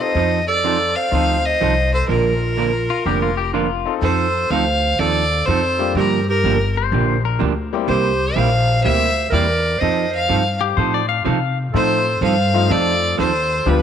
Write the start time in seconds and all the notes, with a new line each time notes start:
0.00 C4 D#4 F4 A4 C5 D#5
0.15 F2 F3 C4 D#4 A4
0.48 A4 D5
0.64 F3 C4 D#4 F4 A4
0.95 C5 F5
1.11 D2 F3 C4 D#4 F4 A4 C5
1.45 C5 D#5
1.61 C2 F3 C4 D#4 A4
1.93 A4 C5
2.08 A#1 D3 F3 A#3 D4 F4 A#4
2.57 D3 F3 A#3 D4 A#4
2.90 F4
3.06 F1 D3 F3 A#3 D4 G4 A#4
3.22 F4
3.37 G4
3.53 D3 F3 A#3 D4 F4 A#4
3.85 C4 D#4 F4 A4
4.01 F2 F3 C4 D#4 A4 C5
4.50 D2 F3 C4 D#4 A4 C5 F5
4.98 D#2 F3 C4 D#4 A4 D5
5.46 F2 F3 C4 D#4 A4 C5
5.79 G3 A#3 D4 F4 G4
5.95 G2 D3 F3 A#3 D4 G4 A#4
6.29 G4 A#4
6.44 G1 D3 F3 A#3 D4 G4
6.77 C5
6.92 A#1 D3 F3 A#3 D4 G4
7.25 A#4
7.39 D2 D3 F3 A#3 D4 G4
7.73 G3 A#3 C4 E4 G4
7.87 C2 C3 G3 A#3 E4 G4 C5
8.34 A#1 C3 G3 A#3 E4 G4 C5 F5
8.81 D2 C3 G3 C5 E5
8.86 A#3 E4 G4
9.30 E2 C3 G3 A#3 E4 A#4 D5
9.34 G4
9.78 F2 F3 C4 D#4 C5 D#5
9.83 A4
10.11 C5 F5
10.29 G2 F3 C4 D#4 A4
10.61 G4
10.77 A2 F3 C4 D#4 A4 C5
10.94 D5
11.09 F5
11.25 C3 F3 C4 D#4 A4 F5
11.72 A2 F3 A3 C4 D#4 F4 A4 C5
11.76 D#4 A4
12.21 G2 F3 C4 D#4 A4 C5 F5
12.54 F3 A3 C4 D#4 F4
12.70 F2 F3 C4 D#4 A4 D5
13.17 D#2 F3 C4 D#4 A4 C5
13.66 D2 D3 F3 G3 B3 D4 F4 G4 B4